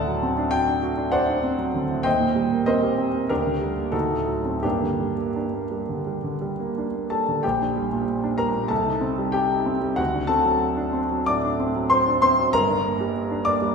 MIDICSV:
0, 0, Header, 1, 2, 480
1, 0, Start_track
1, 0, Key_signature, -2, "minor"
1, 0, Tempo, 606673
1, 1623, Time_signature, 4, 2, 24, 8
1, 1623, Tempo, 628931
1, 3063, Tempo, 699301
1, 5463, Tempo, 636943
1, 7863, Tempo, 668151
1, 8343, Tempo, 623701
1, 10237, End_track
2, 0, Start_track
2, 0, Title_t, "Grand piano"
2, 0, Program_c, 0, 0
2, 0, Control_c, 0, 64, 127
2, 0, Note_on_c, 0, 38, 64
2, 0, Note_on_c, 0, 45, 46
2, 0, Note_on_c, 0, 50, 49
2, 0, Note_on_c, 0, 74, 81
2, 0, Note_on_c, 0, 78, 82
2, 0, Note_on_c, 0, 81, 111
2, 64, Note_on_c, 0, 54, 53
2, 137, Note_off_c, 0, 50, 0
2, 181, Note_on_c, 0, 60, 52
2, 253, Note_off_c, 0, 54, 0
2, 298, Note_on_c, 0, 62, 56
2, 371, Note_off_c, 0, 60, 0
2, 387, Note_off_c, 0, 74, 0
2, 388, Note_off_c, 0, 78, 0
2, 401, Note_on_c, 0, 79, 98
2, 415, Note_off_c, 0, 81, 0
2, 415, Note_on_c, 0, 66, 52
2, 489, Note_off_c, 0, 62, 0
2, 537, Note_on_c, 0, 62, 48
2, 609, Note_off_c, 0, 66, 0
2, 653, Note_on_c, 0, 66, 53
2, 731, Note_off_c, 0, 62, 0
2, 773, Note_on_c, 0, 62, 51
2, 849, Note_off_c, 0, 66, 0
2, 883, Note_on_c, 0, 78, 92
2, 889, Note_on_c, 0, 72, 70
2, 889, Note_on_c, 0, 74, 77
2, 892, Note_off_c, 0, 79, 0
2, 892, Note_on_c, 0, 66, 52
2, 969, Note_off_c, 0, 62, 0
2, 1013, Note_on_c, 0, 62, 53
2, 1088, Note_off_c, 0, 66, 0
2, 1136, Note_on_c, 0, 60, 53
2, 1207, Note_off_c, 0, 62, 0
2, 1253, Note_on_c, 0, 54, 48
2, 1329, Note_off_c, 0, 60, 0
2, 1379, Note_on_c, 0, 50, 50
2, 1449, Note_off_c, 0, 54, 0
2, 1507, Note_off_c, 0, 45, 0
2, 1507, Note_on_c, 0, 45, 41
2, 1573, Note_off_c, 0, 50, 0
2, 1585, Note_off_c, 0, 72, 0
2, 1585, Note_off_c, 0, 74, 0
2, 1592, Note_off_c, 0, 38, 0
2, 1609, Note_on_c, 0, 79, 94
2, 1614, Note_off_c, 0, 78, 0
2, 1615, Note_on_c, 0, 75, 73
2, 1617, Note_on_c, 0, 72, 66
2, 1620, Note_on_c, 0, 39, 55
2, 1626, Note_off_c, 0, 45, 0
2, 1637, Control_c, 0, 64, 0
2, 1740, Note_on_c, 0, 46, 44
2, 1769, Control_c, 0, 64, 127
2, 1855, Note_on_c, 0, 55, 46
2, 1930, Note_off_c, 0, 46, 0
2, 1981, Note_on_c, 0, 58, 45
2, 2047, Note_off_c, 0, 55, 0
2, 2063, Note_off_c, 0, 75, 0
2, 2064, Note_off_c, 0, 72, 0
2, 2089, Note_on_c, 0, 75, 87
2, 2090, Note_off_c, 0, 79, 0
2, 2098, Note_on_c, 0, 70, 64
2, 2098, Note_on_c, 0, 72, 65
2, 2100, Note_on_c, 0, 60, 48
2, 2169, Note_off_c, 0, 58, 0
2, 2220, Note_on_c, 0, 67, 45
2, 2288, Note_off_c, 0, 60, 0
2, 2333, Note_on_c, 0, 60, 48
2, 2408, Note_off_c, 0, 67, 0
2, 2458, Note_on_c, 0, 58, 42
2, 2525, Note_off_c, 0, 60, 0
2, 2544, Note_off_c, 0, 39, 0
2, 2544, Note_off_c, 0, 70, 0
2, 2544, Note_off_c, 0, 72, 0
2, 2570, Note_off_c, 0, 75, 0
2, 2571, Note_on_c, 0, 70, 84
2, 2576, Note_off_c, 0, 58, 0
2, 2578, Note_on_c, 0, 62, 57
2, 2580, Note_on_c, 0, 67, 61
2, 2581, Note_on_c, 0, 38, 54
2, 2588, Control_c, 0, 64, 0
2, 2706, Note_on_c, 0, 50, 37
2, 2739, Control_c, 0, 64, 127
2, 2815, Note_on_c, 0, 55, 40
2, 2895, Note_off_c, 0, 50, 0
2, 2938, Note_on_c, 0, 58, 43
2, 3012, Note_off_c, 0, 55, 0
2, 3034, Note_off_c, 0, 62, 0
2, 3035, Note_off_c, 0, 67, 0
2, 3045, Note_off_c, 0, 38, 0
2, 3047, Note_on_c, 0, 69, 76
2, 3053, Note_on_c, 0, 63, 55
2, 3054, Note_on_c, 0, 66, 56
2, 3056, Note_on_c, 0, 38, 52
2, 3061, Note_off_c, 0, 70, 0
2, 3062, Note_off_c, 0, 58, 0
2, 3075, Control_c, 0, 64, 0
2, 3178, Note_on_c, 0, 45, 39
2, 3196, Control_c, 0, 64, 127
2, 3297, Note_on_c, 0, 54, 42
2, 3368, Note_off_c, 0, 45, 0
2, 3417, Note_on_c, 0, 60, 37
2, 3492, Note_off_c, 0, 54, 0
2, 3510, Note_off_c, 0, 63, 0
2, 3511, Note_off_c, 0, 66, 0
2, 3524, Note_off_c, 0, 38, 0
2, 3535, Note_off_c, 0, 69, 0
2, 3535, Note_on_c, 0, 67, 68
2, 3542, Note_off_c, 0, 60, 0
2, 3544, Note_on_c, 0, 58, 53
2, 3545, Note_on_c, 0, 43, 52
2, 3545, Note_on_c, 0, 62, 50
2, 3557, Control_c, 0, 64, 0
2, 3669, Note_on_c, 0, 50, 36
2, 3674, Control_c, 0, 64, 127
2, 3791, Note_on_c, 0, 55, 39
2, 3867, Note_off_c, 0, 50, 0
2, 3902, Note_off_c, 0, 58, 0
2, 3912, Note_on_c, 0, 58, 40
2, 3988, Note_off_c, 0, 55, 0
2, 4029, Note_off_c, 0, 62, 0
2, 4040, Note_on_c, 0, 62, 42
2, 4107, Note_off_c, 0, 58, 0
2, 4164, Note_on_c, 0, 58, 39
2, 4230, Note_off_c, 0, 62, 0
2, 4280, Note_on_c, 0, 55, 37
2, 4352, Note_off_c, 0, 58, 0
2, 4403, Note_on_c, 0, 50, 35
2, 4471, Note_off_c, 0, 55, 0
2, 4524, Note_on_c, 0, 55, 38
2, 4593, Note_off_c, 0, 50, 0
2, 4644, Note_on_c, 0, 50, 36
2, 4714, Note_off_c, 0, 55, 0
2, 4762, Note_on_c, 0, 55, 40
2, 4833, Note_off_c, 0, 50, 0
2, 4886, Note_on_c, 0, 58, 42
2, 4950, Note_off_c, 0, 55, 0
2, 5013, Note_on_c, 0, 62, 40
2, 5070, Note_off_c, 0, 58, 0
2, 5131, Note_on_c, 0, 58, 37
2, 5193, Note_off_c, 0, 62, 0
2, 5229, Note_off_c, 0, 67, 0
2, 5234, Note_on_c, 0, 81, 68
2, 5242, Note_on_c, 0, 69, 54
2, 5244, Note_on_c, 0, 55, 40
2, 5312, Note_off_c, 0, 58, 0
2, 5361, Note_on_c, 0, 50, 35
2, 5423, Note_off_c, 0, 55, 0
2, 5436, Note_off_c, 0, 43, 0
2, 5452, Note_off_c, 0, 69, 0
2, 5459, Note_on_c, 0, 79, 70
2, 5463, Note_off_c, 0, 81, 0
2, 5467, Note_on_c, 0, 67, 60
2, 5468, Note_off_c, 0, 50, 0
2, 5475, Note_on_c, 0, 34, 59
2, 5476, Control_c, 0, 64, 0
2, 5587, Control_c, 0, 64, 127
2, 5600, Note_on_c, 0, 62, 45
2, 5715, Note_on_c, 0, 55, 50
2, 5786, Note_off_c, 0, 62, 0
2, 5835, Note_on_c, 0, 46, 50
2, 5903, Note_off_c, 0, 55, 0
2, 6066, Note_on_c, 0, 62, 52
2, 6157, Note_off_c, 0, 67, 0
2, 6173, Note_on_c, 0, 82, 80
2, 6179, Note_on_c, 0, 70, 66
2, 6183, Note_off_c, 0, 79, 0
2, 6185, Note_on_c, 0, 55, 47
2, 6213, Note_off_c, 0, 46, 0
2, 6256, Note_off_c, 0, 62, 0
2, 6299, Note_on_c, 0, 46, 44
2, 6375, Note_off_c, 0, 55, 0
2, 6400, Note_off_c, 0, 34, 0
2, 6403, Note_off_c, 0, 70, 0
2, 6404, Note_on_c, 0, 81, 80
2, 6416, Note_off_c, 0, 82, 0
2, 6417, Note_on_c, 0, 69, 70
2, 6418, Note_on_c, 0, 36, 61
2, 6420, Note_off_c, 0, 46, 0
2, 6436, Control_c, 0, 64, 0
2, 6535, Note_on_c, 0, 63, 44
2, 6550, Control_c, 0, 64, 127
2, 6651, Note_on_c, 0, 60, 49
2, 6732, Note_off_c, 0, 63, 0
2, 6782, Note_on_c, 0, 55, 46
2, 6851, Note_off_c, 0, 60, 0
2, 6873, Note_off_c, 0, 69, 0
2, 6885, Note_on_c, 0, 79, 81
2, 6895, Note_on_c, 0, 67, 64
2, 6897, Note_off_c, 0, 81, 0
2, 7018, Note_on_c, 0, 63, 47
2, 7141, Note_on_c, 0, 60, 55
2, 7172, Note_off_c, 0, 55, 0
2, 7217, Note_off_c, 0, 63, 0
2, 7256, Note_on_c, 0, 55, 45
2, 7338, Note_off_c, 0, 60, 0
2, 7354, Note_off_c, 0, 67, 0
2, 7359, Note_off_c, 0, 36, 0
2, 7367, Note_on_c, 0, 78, 85
2, 7375, Note_on_c, 0, 66, 68
2, 7378, Note_on_c, 0, 38, 57
2, 7380, Note_off_c, 0, 79, 0
2, 7383, Note_off_c, 0, 55, 0
2, 7404, Control_c, 0, 64, 0
2, 7500, Note_on_c, 0, 62, 46
2, 7534, Control_c, 0, 64, 127
2, 7602, Note_off_c, 0, 66, 0
2, 7602, Note_on_c, 0, 81, 91
2, 7612, Note_on_c, 0, 69, 64
2, 7614, Note_on_c, 0, 60, 47
2, 7615, Note_off_c, 0, 78, 0
2, 7693, Note_off_c, 0, 62, 0
2, 7736, Note_on_c, 0, 54, 51
2, 7809, Note_off_c, 0, 60, 0
2, 7970, Note_on_c, 0, 62, 55
2, 8087, Note_on_c, 0, 60, 50
2, 8120, Note_off_c, 0, 54, 0
2, 8169, Note_off_c, 0, 62, 0
2, 8216, Note_on_c, 0, 54, 45
2, 8288, Note_off_c, 0, 60, 0
2, 8306, Note_off_c, 0, 69, 0
2, 8308, Note_off_c, 0, 38, 0
2, 8326, Note_on_c, 0, 86, 97
2, 8330, Note_off_c, 0, 81, 0
2, 8336, Note_on_c, 0, 74, 70
2, 8340, Note_on_c, 0, 45, 46
2, 8414, Note_off_c, 0, 54, 0
2, 8464, Note_on_c, 0, 62, 50
2, 8540, Note_off_c, 0, 45, 0
2, 8583, Note_on_c, 0, 60, 50
2, 8660, Note_off_c, 0, 62, 0
2, 8704, Note_on_c, 0, 54, 52
2, 8779, Note_off_c, 0, 60, 0
2, 8796, Note_off_c, 0, 74, 0
2, 8812, Note_on_c, 0, 84, 95
2, 8821, Note_off_c, 0, 86, 0
2, 8822, Note_on_c, 0, 72, 69
2, 8949, Note_on_c, 0, 62, 50
2, 9048, Note_off_c, 0, 84, 0
2, 9051, Note_off_c, 0, 72, 0
2, 9060, Note_on_c, 0, 84, 98
2, 9067, Note_on_c, 0, 60, 52
2, 9068, Note_on_c, 0, 72, 71
2, 9094, Note_off_c, 0, 54, 0
2, 9144, Note_off_c, 0, 62, 0
2, 9194, Note_on_c, 0, 54, 45
2, 9264, Note_off_c, 0, 60, 0
2, 9295, Note_off_c, 0, 72, 0
2, 9300, Note_on_c, 0, 82, 108
2, 9305, Note_on_c, 0, 31, 59
2, 9308, Note_off_c, 0, 84, 0
2, 9311, Note_on_c, 0, 70, 73
2, 9312, Note_on_c, 0, 43, 64
2, 9314, Note_off_c, 0, 54, 0
2, 9328, Control_c, 0, 64, 0
2, 9430, Note_on_c, 0, 62, 46
2, 9461, Control_c, 0, 64, 127
2, 9550, Note_on_c, 0, 58, 53
2, 9621, Note_off_c, 0, 62, 0
2, 9666, Note_on_c, 0, 55, 53
2, 9740, Note_off_c, 0, 58, 0
2, 9897, Note_on_c, 0, 62, 54
2, 9993, Note_off_c, 0, 70, 0
2, 10007, Note_on_c, 0, 86, 100
2, 10014, Note_on_c, 0, 74, 72
2, 10016, Note_on_c, 0, 58, 50
2, 10018, Note_off_c, 0, 82, 0
2, 10047, Note_off_c, 0, 55, 0
2, 10091, Note_off_c, 0, 62, 0
2, 10136, Note_on_c, 0, 55, 51
2, 10210, Note_off_c, 0, 58, 0
2, 10228, Note_off_c, 0, 31, 0
2, 10232, Note_off_c, 0, 43, 0
2, 10237, Note_off_c, 0, 55, 0
2, 10237, Note_off_c, 0, 74, 0
2, 10237, Note_off_c, 0, 86, 0
2, 10237, End_track
0, 0, End_of_file